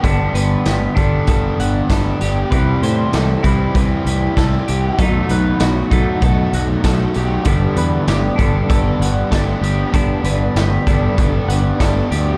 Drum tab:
HH |xxxxxxxx|xxxxxxxx|xxxxxxxx|xxxxxxxx|
SD |--o---o-|--o---o-|--o---o-|--o---o-|
BD |o--oo-o-|o--oo-o-|o--oo-o-|o--oo-o-|

HH |xxxxxxxx|
SD |--o---o-|
BD |o--oo-o-|